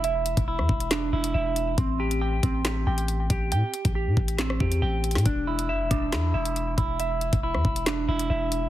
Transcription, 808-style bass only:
X:1
M:4/4
L:1/16
Q:1/4=138
K:Dmix
V:1 name="808-style bass" clef=bass
E,,,3 E,,,2 E,, E,,,4 E,,,2 E,,,4 | A,,,6 A,,,4 A,,,4 A,,,2 | A,, z2 A,,,2 A,, A,,,4 E,,2 A,,,3 A,, | E,,,4 F,,, E,,, E,,,2 E,,2 E,,,4 E,,,2- |
E,,,3 E,,,2 E,, E,,,4 E,,,2 E,,,4 |]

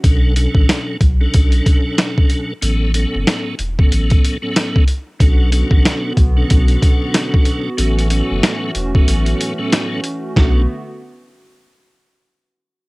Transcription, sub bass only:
X:1
M:4/4
L:1/16
Q:"Swing 16ths" 1/4=93
K:Bm
V:1 name="Sub bass" clef=bass
B,,,3 A,,, z2 B,,,2 B,,,2 z6 | A,,,3 F,,, z2 E,,,2 A,,,2 z6 | B,,,3 A,,, z2 B,,,2 B,,,2 z6 | A,,,3 F,,, z2 E,,,2 A,,,2 z6 |
B,,,2 z12 z2 |]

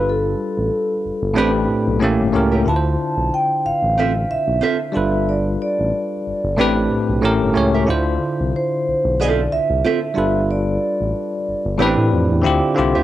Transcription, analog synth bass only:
X:1
M:4/4
L:1/16
Q:"Swing 16ths" 1/4=92
K:Ddor
V:1 name="Analog synth bass" clef=bass
G,,,2 z A,,, z2 G,,, G,,, A,,,2 B,,, B,,, A,,, G,,, ^C,,2 | D,,2 z B,,, z2 A,,, A,,,3 B,,, B,,, z2 G,,,2- | G,,,2 z A,,, z2 G,,, G,,, A,,,2 B,,, B,,, A,,, G,,, ^C,,2 | D,,2 z C,, z2 B,,, B,,,3 C,, C,, z2 G,,,2- |
G,,,2 z A,,, z2 G,,, G,,, A,,, A,, F,, E,, D,, z C,, D,, |]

